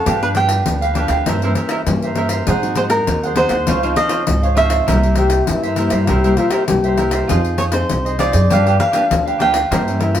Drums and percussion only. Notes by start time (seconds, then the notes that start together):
0.06 pandeiro
0.23 pandeiro
0.35 pandeiro
0.49 pandeiro
0.66 pandeiro
0.82 pandeiro
0.95 pandeiro
1.08 pandeiro
1.26 pandeiro
1.42 pandeiro
1.55 pandeiro
1.69 pandeiro
1.87 pandeiro
2.02 pandeiro
2.15 pandeiro
2.29 pandeiro
2.47 pandeiro
2.63 pandeiro
2.75 pandeiro
2.90 pandeiro
3.07 pandeiro
3.23 pandeiro
3.36 pandeiro
3.49 pandeiro
3.67 pandeiro
3.83 pandeiro
3.96 pandeiro
4.09 pandeiro
4.27 pandeiro
4.43 pandeiro
4.57 pandeiro
4.70 pandeiro
4.88 pandeiro
5.03 pandeiro
5.15 pandeiro
5.30 pandeiro
5.47 pandeiro
5.63 pandeiro
5.76 pandeiro
5.90 pandeiro
6.07 pandeiro
6.24 pandeiro
6.37 pandeiro
6.50 pandeiro
6.68 pandeiro
6.84 pandeiro
6.98 pandeiro
7.11 pandeiro
7.29 pandeiro
7.45 pandeiro
7.58 pandeiro
7.72 pandeiro
7.89 pandeiro
8.06 pandeiro
8.19 pandeiro
8.33 pandeiro
8.51 pandeiro
8.67 pandeiro
8.80 pandeiro
8.93 pandeiro
9.11 pandeiro
9.28 pandeiro
9.40 pandeiro
9.54 pandeiro
9.72 pandeiro
9.88 pandeiro
10.01 pandeiro
10.15 pandeiro